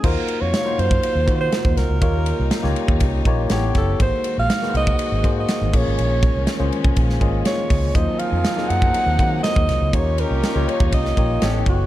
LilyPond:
<<
  \new Staff \with { instrumentName = "Alto saxophone" } { \time 4/4 \key ees \dorian \tempo 4 = 121 bes'8. des''8. c''4~ c''16 c''8. bes'8~ | bes'4. r2 a'8 | c''8. f''8. ees''4~ ees''16 ees''8. des''8~ | des''4. r4. des''4 |
ees''8 f''4 ges''4. ees''4 | des''8 bes'4 des''8 ees''4. ges'8 | }
  \new Staff \with { instrumentName = "Tine electric piano" } { \time 4/4 \key ees \dorian <bes ees' f' ges' c''>4 r16 <bes ees' f' ges' c''>4 r16 <bes ees' f' ges' c''>4~ <bes ees' f' ges' c''>16 r16 | <bes ees' f' g' des''>4 r16 <bes ees' f' g' des''>4 r16 <bes ees' f' g' des''>8 <b e' g' a' cis''>8. r16 | <bes ees' ges' aes' c''>4 r16 <bes ees' ges' aes' ces'' c''>4 r16 <bes ees' ges' aes' c''>4 <bes des' f' aes' des''>8~ | <bes des' f' aes' des''>4 r16 <bes des' f' aes' c''>4 r16 <bes des' f' aes' ees''>4~ <bes des' f' aes' ees''>16 r16 |
<ges bes ees' f' c''>4 r16 <ges bes c' ees' aes'>4 r16 <ges bes ees' f' c''>4~ <ges bes ees' f' c''>16 r16 | <bes ees' f' g' des''>4 r16 <bes ees' f' g' des''>4 r16 <bes ees' f' g' des''>8 <b e' g' a' cis''>8. r16 | }
  \new Staff \with { instrumentName = "Horn section" } { \time 4/4 \key ees \dorian r1 | r1 | r1 | r1 |
<f c' aes'>2.~ <f c' aes'>8 r8 | <ees des' g'>2~ <ees des' g'>8 r8 <e cis' a'>8 r8 | }
  \new Staff \with { instrumentName = "String section" } { \time 4/4 \key ees \dorian << { <ges f''>1 | <g ees'>2. <b g'>4 | <aes ges'>2.~ <aes ges'>8 <aes des'>8~ | <aes des'>1 |
<bes ees'>1 | <g ees'>2. <b g'>4 | } \\ { c1 | des1 | ees1~ | ees1~ |
ees1 | des1 | } >> }
  \new Staff \with { instrumentName = "Fingered electric bass" } { \clef bass \time 4/4 \key ees \dorian ees,16 r8 f,16 r8 ges,8 r16 ees,16 ees8 r16 ees,16 c,16 des,16 | ees,8. c,16 r16 des,16 r16 ees,16 c,8 bes,,8 a,,8 ges,,8 | aes,,16 r8 bes,,16 r8 c,8 r16 aes,,16 aes,8 r16 aes,,16 bes,,16 aes,,16 | bes,,8. c,16 r16 des,16 r16 c,16 bes,,8 aes,,8 r8 des,8 |
ees,16 r8 f,16 r8 ges,8 r16 ees,16 ees8 r16 ees,16 c,16 des,16 | ees,8. c,16 r16 des,16 r16 ees,16 c,8 bes,,8 a,,8 ges,,8 | }
  \new DrumStaff \with { instrumentName = "Drums" } \drummode { \time 4/4 <cymc bd>8 cymr8 <cymr sn>8 cymr16 bd16 cymr8 <bd cymr>8 <cymr sn>16 bd16 <cymr sn>8 | <bd cymr>8 cymr8 <cymr sn>16 sn16 cymr16 bd16 <bd cymr>8 <bd cymr>8 <cymr sn>8 <bd cymr sn>8 | <bd cymr>8 cymr8 <cymr sn>16 sn16 cymr16 bd16 cymr8 <bd cymr>8 <cymr sn>8 <cymc bd>8 | cymr8 <bd cymr>8 <cymr sn>8 cymr16 bd16 <bd cymr>16 sn16 <bd cymr>8 <cymr sn>8 <hho bd cymr>8 |
<hhp bd cymr>8 cymr8 <cymr sn>16 sn16 cymr16 bd16 cymr8 <bd cymr>8 <cymr sn>16 bd16 <cymr sn>8 | <bd cymr>8 cymr8 <cymr sn>8 cymr16 bd16 <bd cymr>16 sn16 <bd cymr>8 <cymr sn>8 <bd cymr>8 | }
>>